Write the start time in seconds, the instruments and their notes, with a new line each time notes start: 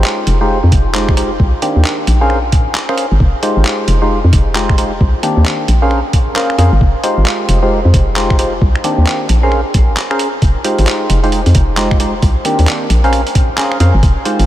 Already playing: synth stab G#3 D#4 F4 G4 C5
0.04 clap
0.27 fm bass F1, closed hi-hat
0.41 synth stab G#3 D#4 F4 G4 C5
0.64 fm bass F2
0.72 fm bass F1, kick, closed hi-hat
0.94 synth stab G#3 D#4 F4 G4 C5, clap
1.09 finger snap, kick
1.17 synth stab G#3 D#4 F4 G4 C5, closed hi-hat
1.40 fm bass C2, kick
1.62 synth stab D#3 A#3 C4 D4 G4, closed hi-hat
1.76 fm bass D#2
1.85 clap
2.07 fm bass A#1, closed hi-hat
2.21 synth stab C#4 G#4 A#4 C5 F5
2.30 finger snap
2.52 fm bass A#2, kick, closed hi-hat
2.75 clap
2.89 synth stab C#4 G#4 A#4 C5 F5, finger snap
2.98 closed hi-hat
3.12 fm bass G#1
3.20 fm bass F1, kick
3.43 synth stab G#3 D#4 F4 G4 C5, closed hi-hat
3.57 fm bass G#1
3.65 clap
3.88 fm bass F1, closed hi-hat
4.02 synth stab G#3 D#4 F4 G4 C5
4.24 fm bass F2
4.33 fm bass F1, kick, closed hi-hat
4.55 synth stab G#3 D#4 F4 G4 C5, clap
4.69 finger snap, kick
4.78 synth stab G#3 D#4 F4 G4 C5, closed hi-hat
5.01 fm bass C2, kick
5.23 synth stab D#3 A#3 C4 D4 G4, closed hi-hat
5.37 fm bass D#2
5.46 clap
5.68 fm bass A#1, closed hi-hat
5.82 synth stab C#4 G#4 A#4 C5 F5
5.91 finger snap
6.13 kick, closed hi-hat
6.36 synth stab C#4 G#4 A#4 C5 F5, clap
6.50 finger snap
6.58 fm bass F2, synth stab C#4 G#4 A#4 C5 F5, closed hi-hat
6.72 fm bass G#1
6.81 fm bass F1, kick
7.03 synth stab G#3 D#4 F4 G4 C5, closed hi-hat
7.17 fm bass G#1
7.26 clap
7.49 fm bass F1, closed hi-hat
7.63 synth stab G#3 D#4 F4 G4 C5
7.85 fm bass F2
7.94 fm bass F1, kick, closed hi-hat
8.16 synth stab G#3 D#4 F4 G4 C5, clap
8.30 finger snap, kick
8.39 synth stab G#3 D#4 F4 G4 C5, closed hi-hat
8.62 fm bass C2, kick
8.75 finger snap
8.84 synth stab D#3 A#3 C4 D4 G4, closed hi-hat
8.98 fm bass D#2
9.07 clap
9.29 fm bass A#1, closed hi-hat
9.43 synth stab C#4 G#4 A#4 C5 F5
9.52 finger snap
9.74 fm bass A#1, kick, closed hi-hat
9.88 fm bass G#1
9.97 clap
10.11 synth stab C#4 G#4 A#4 C5 F5, finger snap
10.19 closed hi-hat
10.42 fm bass F1, kick, closed hi-hat
10.64 synth stab G#3 D#4 F4 G4 C5, closed hi-hat
10.79 fm bass G#1, closed hi-hat
10.87 clap, closed hi-hat
11.10 fm bass F1, closed hi-hat
11.24 synth stab G#3 D#4 F4 G4 C5, closed hi-hat
11.32 closed hi-hat
11.46 fm bass F2, closed hi-hat
11.55 fm bass F1, kick, closed hi-hat
11.77 synth stab G#3 D#4 F4 G4 C5, clap, closed hi-hat
11.91 finger snap, kick
12.00 synth stab G#3 D#4 F4 G4 C5, closed hi-hat
12.22 fm bass C2, kick, closed hi-hat
12.45 synth stab D#3 A#3 C4 D4 G4, closed hi-hat
12.59 fm bass D#2, closed hi-hat
12.67 clap, closed hi-hat
12.90 fm bass A#1, closed hi-hat
13.04 synth stab C#4 G#4 A#4 C5 F5, closed hi-hat
13.13 finger snap, closed hi-hat
13.27 closed hi-hat
13.35 kick, closed hi-hat
13.58 synth stab C#4 G#4 A#4 C5 F5, clap, closed hi-hat
13.72 finger snap
13.80 fm bass F2, synth stab C#4 G#4 A#4 C5 F5, closed hi-hat
13.94 fm bass G#1
14.03 fm bass F1, kick, closed hi-hat
14.25 synth stab G#3 D#4 F4 G4 C5, closed hi-hat
14.39 fm bass G#1, closed hi-hat